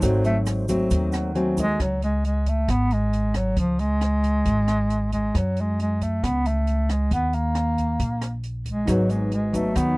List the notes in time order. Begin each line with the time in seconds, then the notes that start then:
0.00 G#1 G#2 F#3 A3 C4 D#4 F#4 A4, kick, closed hi-hat, shaker
0.05 C5
0.24 A3, closed hi-hat, shaker
0.46 cross-stick, closed hi-hat, shaker
0.68 F#3 A3 C4, kick, closed hi-hat, shaker
0.91 D#2 D#3, kick, closed hi-hat, shaker
1.12 F#5, cross-stick, closed hi-hat, shaker
1.35 F#3 A3 C4 G#5, closed hi-hat
1.56 G#3 D#4 F#4 A4 D#5, kick, closed hi-hat, shaker
1.80 C#2 F#3, kick, cross-stick, closed hi-hat
2.02 G#3, closed hi-hat
2.25 G#3, closed hi-hat
2.46 A3, kick, closed hi-hat
2.68 G#1 B3, kick, cross-stick, closed hi-hat
2.91 G#3, closed hi-hat
3.13 closed hi-hat
3.34 F#3, kick, cross-stick, closed hi-hat
3.57 C#2 F3, kick, closed hi-hat
3.79 G#3, closed hi-hat
4.01 cross-stick, closed hi-hat
4.23 kick, closed hi-hat
4.45 G#1, kick, closed hi-hat
4.68 cross-stick, closed hi-hat
4.90 closed hi-hat
5.12 G#3, kick, closed hi-hat
5.34 F#2 F#3, kick, cross-stick, closed hi-hat
5.57 G#3, closed hi-hat
5.80 G#3, closed hi-hat
6.01 A3, kick, closed hi-hat
6.23 C#2 B3, kick, cross-stick, closed hi-hat
6.46 A3, closed hi-hat
6.67 closed hi-hat
6.89 G#3, kick, cross-stick, closed hi-hat
7.11 D#2 B3, kick, closed hi-hat
7.33 A#3, closed hi-hat
7.55 cross-stick, closed hi-hat
7.78 kick, closed hi-hat
8.00 A#1, kick, closed hi-hat
8.22 cross-stick, closed hi-hat
8.44 closed hi-hat
8.66 G#3, kick, closed hi-hat
8.85 G#1 G#2 F#3 B3 D#4 F#4 G#4, kick, cross-stick, closed hi-hat, shaker
8.91 B4
9.09 G#3, closed hi-hat, shaker
9.32 G#3, closed hi-hat
9.53 F#3 A3 B3 D#4, kick, closed hi-hat, shaker
9.75 D#2 D#3 B3, kick, cross-stick, closed hi-hat, shaker